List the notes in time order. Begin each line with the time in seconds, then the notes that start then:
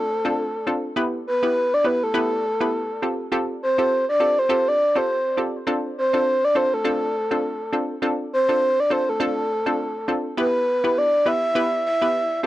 Already playing: A4
0.25 C4 D4 F4 A4
0.67 C4 D4 F4 A4
0.96 B3 E4 G4 B4
1.27 B4
1.43 B3 E4 G4 B4
1.74 D5
1.84 B3 E4 G4 B4
2.03 A4
2.14 B3 E4 G4 B4
2.61 B3 E4 G4 B4
3.02 C4 F4 G4 A4
3.32 C4 F4 G4 A4
3.63 C5
3.78 C4 F4 G4 A4
4.09 D5
4.20 C4 F4 G4 A4
4.39 C5
4.49 C4 F4 G4 A4
4.68 D5
4.96 C4 F4 G4 A4 C5
5.37 C4 F4 G4 A4
5.67 C4 D4 F4 A4
5.98 C5
6.13 C4 D4 F4 A4
6.44 D5
6.55 C4 D4 F4 A4 C5
6.74 A4
6.84 C4 D4 F4 A4
7.31 C4 D4 F4 A4
7.73 C4 D4 F4 A4
8.02 C4 D4 F4 A4
8.33 C5
8.49 C4 D4 F4 A4
8.80 D5
8.90 C4 D4 F4 A4 C5
9.09 A4
9.20 C4 D4 F4 A4
9.66 C4 D4 F4 A4
10.08 C4 D4 F4 A4
10.37 B3 E4 G4 B4
10.84 B3 E4 G4 B4
10.98 D5
11.26 B3 E4 G4 B4 E5
11.55 B3 E4 G4 B4
11.86 E5
12.02 B3 E4 G4 B4
12.43 C4 F4 G4